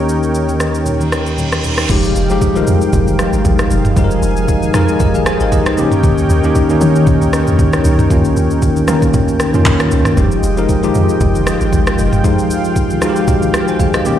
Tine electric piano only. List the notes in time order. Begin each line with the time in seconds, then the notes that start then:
Already playing: D#3 A#3 C#4 G4
1.90 F3 G#3 D#4 G4
2.29 F3 G#3 D#4 G4
2.55 F3 G3 D#4 A#4
2.62 G#3
3.96 F3 G#3 D#4 G#4
4.04 A#4
4.74 F3 G#3 D#4 A#4
5.01 G4 D#5
5.15 G#4 F5
5.27 C5 G#5
5.41 A#4 G5
5.52 G4 D#5
5.67 D#4 C5
5.77 D#3 A#3 C#4 G4
6.43 D#3 A#3 C#4 G4
6.69 D#3 A#3 C#4 D#4
8.10 D#3 A#3 C#4 F4
8.88 D#3 A#3 C#4 A#4
9.54 D#3 A#3 C#4 F4
10.17 F3 G#3 D#4 G4
10.57 F3 G#3 D#4 A#4
10.83 F3 G#3 D#4 G4
12.24 F3 G#3 D#4 F4
13.02 F3 G#3 D#4 F#4
13.09 G4
13.68 C5 G#5
13.80 G#4 F5
13.94 G4 D#5
14.05 D#3 A#3 C#4 G4